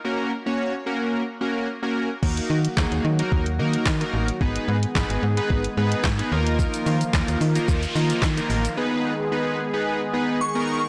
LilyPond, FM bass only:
\new Staff \with { instrumentName = "FM bass" } { \clef bass \time 4/4 \key dis \minor \tempo 4 = 110 r1 | dis,8 dis8 dis,16 dis,16 dis8 dis,8 dis8 dis8 a,,8 | gis,,8 gis,8 gis,,16 gis,,16 gis,8 gis,,8 gis,8 gis,8 dis,8~ | dis,8 dis8 dis,16 dis,16 dis8 dis,8 dis8 dis8 a,,8 |
r1 | }